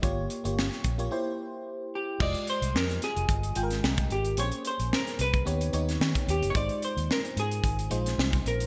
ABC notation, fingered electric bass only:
X:1
M:4/4
L:1/16
Q:"Swing 16ths" 1/4=110
K:Ablyd
V:1 name="Fingered electric bass" clef=bass
G,,,2 z G,,,2 z B,,,2 z8 | F,,, z2 C,, F,,2 z F,,, G,,,2 A,,,2 C,,2 A,,,2 | B,,, z2 B,,, z2 C,,2 E,,2 E,,2 E, z E,, ^F,,, | A,,, z2 E,, z2 A,,2 A,,,2 B,,,2 C,,2 B,,,2 |]